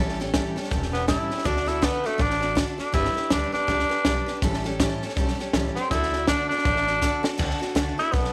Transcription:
Already playing: upright bass A1, steel-string acoustic guitar A2 E3 G3
0.00 steel-string acoustic guitar C#4 G4 A4
0.08 snare
0.19 steel-string acoustic guitar G3 C#4 G4 A4, snare
0.34 steel-string acoustic guitar A2 E3 G3 C#4 G4 A4, kick, snare, hi-hat pedal
0.56 steel-string acoustic guitar G3 C#4 G4 A4, muted upright bass stroke, snare
0.64 snare
0.70 upright bass E1, steel-string acoustic guitar G3 C#4 G4 A4, kick, snare
0.82 snare
0.93 steel-string acoustic guitar G3 C#4 G4 A4, tenor saxophone B3, snare
1.07 steel-string acoustic guitar A2 E3 G3 C#4 G4 A4, tenor saxophone E4, kick, snare, hi-hat pedal
1.30 steel-string acoustic guitar G3 C#4 G4 A4, muted upright bass stroke, snare
1.38 snare
1.44 upright bass D2, steel-string acoustic guitar D3 A3 D4 F#4 A4, tenor saxophone D4, kick, snare
1.56 snare
1.66 steel-string acoustic guitar D4 F#4 A4, tenor saxophone E4, snare
1.82 steel-string acoustic guitar D3 A3 D4 F#4 A4, tenor saxophone B3, kick, snare, hi-hat pedal
2.04 tenor saxophone A3, steel-string acoustic guitar D4 F#4 A4, muted upright bass stroke, snare
2.18 upright bass A1, steel-string acoustic guitar A3 D4 F#4 A4, tenor saxophone D4, kick, snare
2.30 snare
2.41 steel-string acoustic guitar D4 F#4 A4, snare
2.55 steel-string acoustic guitar D3 A3 D4 F#4 A4, kick, snare, hi-hat pedal
2.78 tenor saxophone D4, steel-string acoustic guitar D4 F#4 A4, muted upright bass stroke, snare
2.92 upright bass G1, steel-string acoustic guitar G3 D4 G4 B4, tenor saxophone E4, kick, snare
3.05 snare
3.14 steel-string acoustic guitar D4 G4 B4, snare
3.30 upright bass D2, steel-string acoustic guitar G3 D4 G4 B4, tenor saxophone D4, kick, snare, hi-hat pedal
3.52 tenor saxophone D4, steel-string acoustic guitar D4 G4 B4, snare
3.67 upright bass C#2, steel-string acoustic guitar G3 D4 G4 B4, kick, snare
3.79 snare
3.89 steel-string acoustic guitar D4 G4 B4, muted upright bass stroke, snare
4.05 upright bass B1, steel-string acoustic guitar G3 D4 G4 B4, kick, snare, hi-hat pedal
4.26 steel-string acoustic guitar D4 G4 B4, snare
4.42 upright bass A1, steel-string acoustic guitar A2 E3 G3 C#4 G4 A4, kick, snare
4.53 snare
4.64 steel-string acoustic guitar G3 C#4 G4 A4, snare
4.80 steel-string acoustic guitar A2 E3 G3 C#4 G4 A4, kick, snare, hi-hat pedal
5.01 steel-string acoustic guitar G3 C#4 G4 A4, muted upright bass stroke, snare
5.09 snare
5.16 upright bass B1, steel-string acoustic guitar G3 C#4 G4 A4, kick, snare
5.28 snare
5.39 steel-string acoustic guitar G3 C#4 G4 A4, snare
5.53 upright bass C#2, steel-string acoustic guitar A2 E3 G3 C#4 G4 A4, kick, snare, hi-hat pedal
5.75 steel-string acoustic guitar G3 C#4 G4 A4, tenor saxophone C4, snare
5.90 upright bass D2, steel-string acoustic guitar D3 A3 D4 F#4 A4, tenor saxophone E4, kick, snare
6.03 snare
6.13 steel-string acoustic guitar F#4 A4, snare
6.17 steel-string acoustic guitar D4
6.27 steel-string acoustic guitar D3 A3 D4 F#4 A4, tenor saxophone D4, kick, snare, hi-hat pedal
6.49 tenor saxophone D4, steel-string acoustic guitar F#4 A4, muted upright bass stroke, snare
6.53 steel-string acoustic guitar D4
6.58 snare
6.65 upright bass A1, steel-string acoustic guitar A3 D4 F#4 A4, kick, snare
6.76 snare
6.87 steel-string acoustic guitar D4 F#4 A4, snare
7.01 steel-string acoustic guitar D3 A3 D4 F#4 A4, kick, snare, hi-hat pedal
7.23 steel-string acoustic guitar D4 F#4 A4, muted upright bass stroke, snare
7.38 upright bass D2, steel-string acoustic guitar D3 A3 D4 F#4 A4, kick, snare, crash
7.50 snare
7.59 steel-string acoustic guitar D4 F#4 A4, muted upright bass stroke, snare
7.75 upright bass C#2, steel-string acoustic guitar D3 A3 D4 F#4 A4, snare, hi-hat pedal
7.97 steel-string acoustic guitar D4 F#4 A4, tenor saxophone E4, muted upright bass stroke, snare
8.12 upright bass B1, steel-string acoustic guitar A3 D4 F#4 A4, tenor saxophone B3, kick, snare
8.24 snare

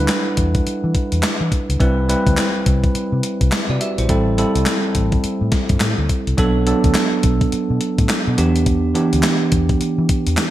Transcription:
Already playing: tine electric piano G3 D4 E4 B4
0.08 snare, clap, closed hi-hat
0.37 fingered electric bass E2, kick, closed hi-hat
0.55 kick, closed hi-hat
0.67 muted fingered electric bass stroke, closed hi-hat
0.84 fingered electric bass E3
0.95 kick, closed hi-hat
1.12 fingered electric bass E2, closed hi-hat
1.23 snare, clap, closed hi-hat
1.41 fingered electric bass E3
1.52 kick, closed hi-hat
1.69 fingered electric bass C#2, closed hi-hat
1.80 fingered electric bass C2, tine electric piano G3 C4 E4 B4, kick, closed hi-hat
2.09 tine electric piano G3 C4 E4 B4, closed hi-hat
2.27 fingered electric bass D2, kick, closed hi-hat
2.37 snare, clap, closed hi-hat
2.66 fingered electric bass C2, kick, closed hi-hat
2.84 kick, closed hi-hat
2.95 muted fingered electric bass stroke, closed hi-hat
3.12 fingered electric bass C3
3.23 closed hi-hat
3.41 fingered electric bass C2, kick, closed hi-hat
3.52 snare, clap, closed hi-hat
3.69 fingered electric bass C3, tine electric piano F#4 D5
3.81 tine electric piano G4 E5, closed hi-hat
3.98 fingered electric bass A#1, tine electric piano E4 C5, closed hi-hat
4.09 fingered electric bass A1, tine electric piano G3 C4 E4 A4, kick, closed hi-hat
4.38 tine electric piano G3 C4 E4 A4, closed hi-hat
4.55 fingered electric bass C2, closed hi-hat
4.66 snare, clap, closed hi-hat
4.95 fingered electric bass A1, kick, closed hi-hat
5.12 kick, closed hi-hat
5.24 muted fingered electric bass stroke, closed hi-hat
5.41 fingered electric bass A2
5.52 kick, snare, closed hi-hat
5.69 fingered electric bass G2, kick, closed hi-hat
5.80 fingered electric bass A2, snare, clap, closed hi-hat
5.98 fingered electric bass D2
6.09 kick, closed hi-hat
6.27 fingered electric bass C2, closed hi-hat
6.38 fingered electric bass B1, tine electric piano F#3 B3 D4 A4, kick, closed hi-hat
6.66 tine electric piano F#3 B3 D4 A4, closed hi-hat
6.84 fingered electric bass D2, kick, closed hi-hat
6.95 snare, clap, closed hi-hat
7.23 fingered electric bass B1, kick, closed hi-hat
7.41 kick, closed hi-hat
7.52 muted fingered electric bass stroke, closed hi-hat
7.70 fingered electric bass B2
7.81 closed hi-hat
7.98 fingered electric bass A2, kick, closed hi-hat
8.09 snare, clap, closed hi-hat
8.27 fingered electric bass B2
8.38 fingered electric bass E2, tine electric piano E3 B3 D4 G4, closed hi-hat
8.56 closed hi-hat
8.66 kick, closed hi-hat
8.95 tine electric piano E3 B3 D4 G4, closed hi-hat
9.13 fingered electric bass D2, closed hi-hat
9.23 snare, clap, closed hi-hat
9.52 fingered electric bass E2, kick, closed hi-hat
9.69 kick, closed hi-hat
9.81 muted fingered electric bass stroke, closed hi-hat
9.98 fingered electric bass E3
10.09 kick, closed hi-hat
10.27 fingered electric bass E2, closed hi-hat
10.37 snare, clap, closed hi-hat

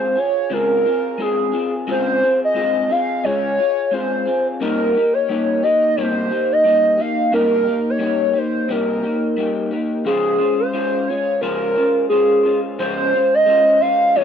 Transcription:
Already playing: clean electric guitar G#3 C4 F4 G#4, soft synth lead C5
0.15 clean electric guitar F4 G#4, soft synth lead C#5
0.50 clean electric guitar C#3 G#3 C4 F4 G#4, soft synth lead A#4
0.84 clean electric guitar C4 F4 G#4
1.18 clean electric guitar G#3 C4 F4 G#4, soft synth lead G#4
1.52 clean electric guitar C4 F4 G#4
1.87 clean electric guitar C#3 G#3 C4 F4 G#4, soft synth lead C5
2.22 clean electric guitar C4 F4 G#4
2.44 soft synth lead D#5
2.54 clean electric guitar G#3 C4 F4 G#4
2.89 clean electric guitar C4 F4 G#4, soft synth lead F5
3.24 clean electric guitar C#3 G#3 F4 G#4, soft synth lead C#5
3.58 clean electric guitar F4 G#4
3.91 clean electric guitar G#3 C4 F4 G#4, soft synth lead C5
4.25 clean electric guitar C4 F4 G#4
4.60 clean electric guitar C3 G3 A#3 D#4 G4, soft synth lead A#4
4.95 clean electric guitar A#3 D#4 G4
5.14 soft synth lead C#5
5.29 clean electric guitar G3 A#3 D#4 G4
5.63 clean electric guitar A#3 D#4 G4, soft synth lead D#5
5.96 clean electric guitar C3 G3 A#3 D#4 G4, soft synth lead C5
6.29 clean electric guitar A#3 D#4 G4
6.52 soft synth lead D#5
6.64 clean electric guitar G3 A#3 D#4 G4
6.97 clean electric guitar A#3 D#4 G4, soft synth lead F5
7.32 clean electric guitar C3 G3 A#3 D#4 G4, soft synth lead A#4
7.66 clean electric guitar A#3 D#4 G4
7.90 soft synth lead C#5
7.99 clean electric guitar G3 A#3 D#4 G4
8.33 clean electric guitar A#3 D#4 G4
8.38 soft synth lead C5
8.68 clean electric guitar C3 G3 A#3 D#4 G4, soft synth lead A#4
9.02 clean electric guitar A#3 D#4 G4
9.37 clean electric guitar G3 A#3 D#4 G4
9.71 clean electric guitar A#3 D#4 G4
10.05 clean electric guitar C#3 F3 G#3 C#4 F4 C5, soft synth lead G#4
10.38 clean electric guitar G#3 C#4 F4 C5
10.60 soft synth lead C5
10.73 clean electric guitar G#3 C#4 F4 C5
11.08 clean electric guitar G#3 C#4 F4, soft synth lead C#5
11.41 clean electric guitar C#3 F3 G#3 C#4 F4 C5, soft synth lead A#4
11.76 clean electric guitar G#3 C#4 F4 C5
12.09 clean electric guitar G#3 C#4 F4 C5, soft synth lead G#4
12.43 clean electric guitar G#3 C#4 F4 C5
12.79 clean electric guitar C#3 F3 G#3 C#4 F4 C5, soft synth lead C5
13.13 clean electric guitar G#3 C#4 F4 C5
13.34 soft synth lead D#5
13.46 clean electric guitar G#3 C#4 F4 C5
13.81 clean electric guitar G#3 C#4 F4 C5, soft synth lead F5
14.15 clean electric guitar C#3 F3 G#3 C#4 F4, soft synth lead C#5

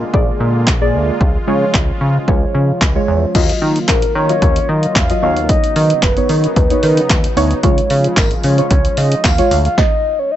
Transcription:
Already playing: analog synth pad D3 G#3 A#3 F4
0.13 analog synth bass A#1, synth stab A#3 G#4 D5, kick
0.40 analog synth bass A#2
0.67 analog synth bass A#1, kick, snare, clap
0.81 synth stab A#3 G#4 D5
0.94 analog synth bass D2
1.21 analog synth bass C#2, analog synth pad C#3 F3, kick
1.47 analog synth bass C#3, synth stab G#3 F4 C#5
1.74 analog synth bass C#2, kick, snare, clap
2.01 analog synth bass C#3
2.27 analog synth bass C#2, synth stab G#3 F4 C#5, kick
2.55 analog synth bass C#3
2.81 analog synth bass C#2, kick, snare, clap
2.95 synth stab G#3 F4 C#5
3.08 analog synth bass E2
3.35 analog synth bass D#2, analog synth pad D#3 F#3 A#3 F4, synth stab F#3 F4 D#5, kick, closed hi-hat, crash
3.49 closed hi-hat
3.62 analog synth bass D#3
3.76 closed hi-hat
3.88 analog synth bass A#1, soft synth lead A#4, kick, snare, clap, closed hi-hat
4.02 closed hi-hat
4.15 analog synth bass D#3, soft synth lead C#5
4.29 synth stab F#3 F4 D#5, closed hi-hat
4.42 analog synth bass D#2, kick, closed hi-hat
4.56 closed hi-hat
4.69 analog synth bass D#3, soft synth lead D#5
4.83 closed hi-hat
4.95 analog synth bass E2, soft synth lead F5, kick, snare, clap, closed hi-hat
5.10 synth stab F#3 F4 D#5, closed hi-hat
5.22 analog synth bass D#2, analog synth pad C#3 B3 D#4, synth stab B3 D#4 C#5, soft synth lead F5
5.37 closed hi-hat
5.49 soft synth lead D#5, kick, closed hi-hat
5.64 closed hi-hat
5.76 analog synth bass D#3, soft synth lead D#5, open hi-hat
5.90 closed hi-hat
6.02 analog synth bass F#1, soft synth lead B4, kick, snare, clap, closed hi-hat
6.17 synth stab B3 D#4 C#5, closed hi-hat
6.29 analog synth bass D#3, soft synth lead A#4, open hi-hat
6.44 closed hi-hat
6.56 analog synth bass D#2, soft synth lead B4, kick, closed hi-hat
6.70 synth stab B3 D#4 C#5, closed hi-hat
6.83 analog synth bass D#3, open hi-hat
6.97 closed hi-hat
7.10 analog synth bass D#2, kick, snare, clap, closed hi-hat
7.24 closed hi-hat
7.36 analog synth bass D2, synth stab B3 D#4 C#5, open hi-hat
7.51 closed hi-hat
7.63 analog synth bass C#2, analog synth pad C#3 F3 G#3 F4, synth stab G#3 F4 C#5, kick, closed hi-hat
7.78 closed hi-hat
7.90 analog synth bass C#3, open hi-hat
8.04 closed hi-hat
8.16 analog synth bass G#1, soft synth lead A#4, kick, snare, clap, closed hi-hat, tambourine
8.31 closed hi-hat
8.44 analog synth bass C#3, soft synth lead C#5, open hi-hat
8.58 synth stab G#3 F4 C#5, closed hi-hat
8.71 analog synth bass C#2, kick, closed hi-hat
8.85 closed hi-hat
8.97 analog synth bass C#3, soft synth lead D#5, open hi-hat
9.12 closed hi-hat
9.24 analog synth bass D#2, soft synth lead F5, kick, snare, clap, closed hi-hat, tambourine
9.38 synth stab G#3 F4 C#5, closed hi-hat
9.51 analog synth bass D2, soft synth lead F5, open hi-hat
9.65 soft synth lead F5, closed hi-hat
9.78 soft synth lead D#5, kick, snare
10.19 soft synth lead C#5
10.31 soft synth lead D#5

